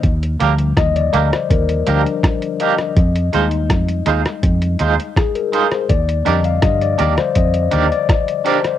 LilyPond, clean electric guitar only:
\new Staff \with { instrumentName = "Clean electric guitar" } { \time 4/4 \key ees \major \tempo 4 = 82 r8 <bes d' g' bes'>8 r8 <bes d' g' bes'>8 r8 <bes d' g' bes'>8 r8 <bes d' g' bes'>8 | r8 <aes ees' f' c''>8 r8 <aes ees' f' c''>8 r8 <aes ees' f' c''>8 r8 <aes ees' f' c''>8 | r8 <d' g' bes' d''>8 r8 <d' g' bes' d''>8 r8 <d' g' bes' d''>8 r8 <d' g' bes' d''>8 | }